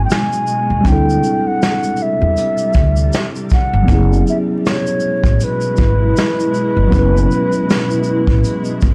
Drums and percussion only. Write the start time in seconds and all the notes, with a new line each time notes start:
0.10 snare, closed hi-hat, shaker
0.33 shaker
0.47 shaker
0.85 kick, closed hi-hat, shaker
1.10 shaker
1.23 shaker
1.62 snare, closed hi-hat, shaker
1.83 shaker
1.96 shaker
2.37 closed hi-hat, shaker
2.58 shaker
2.73 kick, shaker
2.96 shaker
3.13 snare, closed hi-hat, shaker
3.35 shaker
3.50 kick, shaker
3.88 kick, closed hi-hat, shaker
4.13 shaker
4.27 shaker
4.66 snare, closed hi-hat, shaker
4.87 shaker
5.00 shaker
5.24 kick, shaker
5.40 closed hi-hat, shaker
5.61 shaker
5.77 kick, shaker
6.17 snare, closed hi-hat, shaker
6.40 shaker
6.54 shaker
6.92 kick, closed hi-hat, shaker
7.17 shaker
7.31 shaker
7.52 shaker
7.70 snare, closed hi-hat, shaker
7.90 shaker
8.04 shaker
8.27 kick
8.44 closed hi-hat, shaker
8.65 shaker
8.81 kick, shaker